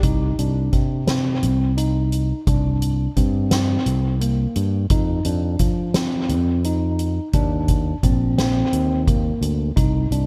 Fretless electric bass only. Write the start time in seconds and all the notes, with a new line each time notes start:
0.03 C2
0.39 C2
0.72 C3
1.43 C2
2.47 C2
3.17 G2
3.86 C2
4.56 G2
4.90 F2
5.25 F2
5.60 F3
6.29 F2
7.34 D#2
8.03 A#1
8.73 D#2
9.41 D2
9.77 C2
10.11 C2